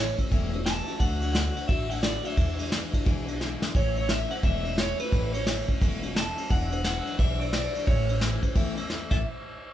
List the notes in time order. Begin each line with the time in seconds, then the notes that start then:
Already playing: A1 E3 A3 C#5
0.00 C#4 E4
0.18 A3 C#4 E4, kick, ride
0.31 E1 A2 E3 A3 C#4 E4, kick, ride
0.52 A3 C#4 E4, ride
0.65 E3 A3 C#4 E4 A5, snare, ride
0.87 A3 C#4 E4, ride
1.00 D2 D3 A3 D4 F#4 F#5, kick, ride
1.21 A3 D4 F#4, ride
1.33 D3 A3 D4 F#5, snare, ride
1.38 F#4
1.55 A3 D4 F#4, ride
1.68 A1 D3 A3 D4 F#4 E5, kick, ride
1.89 A3 D4 F#4 F#5, ride
2.02 D3 A3 D4 F#4 D5, snare, ride
2.23 A3 D4 F#4 E5, ride
2.36 E2 B2 E3 G#3 D4 E4, kick, ride
2.58 E3 G#3 D4 E4, ride
2.70 E3 G#3 D4 E4, snare, ride
2.92 E3 G#3 D4 E4, kick, ride
3.05 B1 E2 B2 E3 G#3 D4 E4, kick, ride
3.27 E3 G#3 D4 E4, ride
3.40 E3 G#3 D4 E4, snare
3.60 E3 G#3 D4 E4, snare
3.74 A1 A2 E3 A3 C#4 E4 C#5, kick, ride
3.94 A3 C#4 E4, ride
3.98 C#5
4.07 E3 A3 C#4 E4 E5, snare, ride
4.29 A3 C#4 E4 F#5, ride
4.42 E1 A2 E3 A3 C#4 E4 E5, kick, ride
4.64 A3 C#4 E4, ride
4.77 E3 A3 C#4 E4 C#5, snare, ride
4.99 A3 C#4 E4 B4, ride
5.12 A1 A2 E3 A3 C#4 E4, kick, ride
5.33 A3 C#4 E4 C#5, ride
5.46 E3 A3 C#4 E4, snare, ride
5.68 A3 C#4 E4, kick, ride
5.81 E1 A2 E3 A3 C#4 E4, kick, ride
6.03 A3 C#4 E4, ride
6.15 E3 A3 C#4 E4 A5, snare, ride
6.36 A3 C#4 E4, ride
6.49 E1 E2 B2 E3 G#3 D4 E4 F#5, kick, ride
6.70 E3 G#3 D4 E4, ride
6.83 E3 G#3 D4 E4 F#5, snare, ride
7.05 E3 G#3 D4 E4, ride
7.18 B1 E2 B2 E3 G#3 D4 E4 E5, kick, ride
7.40 E3 G#3 D4 E4 D5, ride
7.52 E3 G#3 D4 E4 D5, snare, ride
7.73 E3 G#3 D4 E4, ride
7.86 A1 A2 E3 A3 C#4 E4 C#5, kick, ride
8.08 A3 C#4 E4, ride
8.20 E3 A3 C#4 E4, snare, ride
8.41 A3 C#4 E4, kick, ride
8.55 E2 A2 E3 A3 C#4 E4, kick, ride
8.75 A3 C#4 E4, ride
8.88 E3 A3 C#4 E4, snare
9.11 A1 A2 E3 A3 C#4 E4 E5, kick, crash